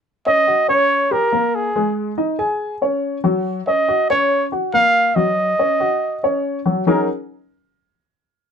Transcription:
<<
  \new Staff \with { instrumentName = "Trumpet" } { \time 4/4 \key fis \major \tempo 4 = 141 r8 dis''4 cis''4 ais'4 gis'8~ | gis'8 r2. r8 | r8 dis''4 cis''4 r8 eis''4 | dis''2. r4 |
ais'8 r2. r8 | }
  \new Staff \with { instrumentName = "Upright piano" } { \time 4/4 \key fis \major r8 <cis' cis''>8 <fis' fis''>8 <cis' cis''>4 <g' g''>8 <ais ais'>4 | <gis gis'>4 <dis' dis''>8 <gis' gis''>4 <cis' cis''>4 <fis fis'>8~ | <fis fis'>8 <cis' cis''>8 <fis' fis''>8 <cis' cis''>4 <fis' fis''>8 <ais ais'>4 | <fis fis'>4 <cis' cis''>8 <fis' fis''>4 <cis' cis''>4 <fis fis'>8 |
<fis cis' dis' fis' gis' ais'>8 r2. r8 | }
>>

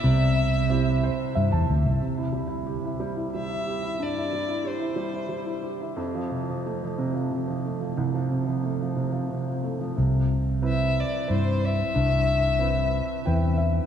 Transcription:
<<
  \new Staff \with { instrumentName = "Violin" } { \time 3/4 \key c \major \tempo 4 = 91 e''2 r4 | r2 e''4 | d''4 c''4. r8 | r2. |
r2. | r4 e''8 d''8 c''8 e''8~ | e''2~ e''8 r8 | }
  \new Staff \with { instrumentName = "Felt piano" } { \time 3/4 \key c \major r4. c''8 e''16 a''8. | r2. | r2. | r2. |
r2. | r2. | r2 g''8 e''8 | }
  \new Staff \with { instrumentName = "Felt piano" } { \time 3/4 \key c \major c4 <c' e' g'>2 | c16 e'16 g16 e'16 g'16 e'16 g16 e'16 g16 e'16 g'16 e'16 | g,16 e'16 g16 e'16 g'16 e'16 g16 e'16 g16 e'16 g'16 e'16 | f,16 f16 c16 f16 a16 f16 c16 f16 c16 f16 a16 f16 |
c,16 f16 c16 f16 a16 f16 c16 f16 c16 f16 a16 f16 | c4 <c' e' b'>4 <c' e' c''>4 | g,4 <c' e' b'>4 <c' e' b'>4 | }
  \new Staff \with { instrumentName = "Fingered electric bass" } { \clef bass \time 3/4 \key c \major c,2 g,16 e,16 d,16 c,16 | r2. | r2. | r2. |
r2. | c,2 g,4 | c,2 e,4 | }
>>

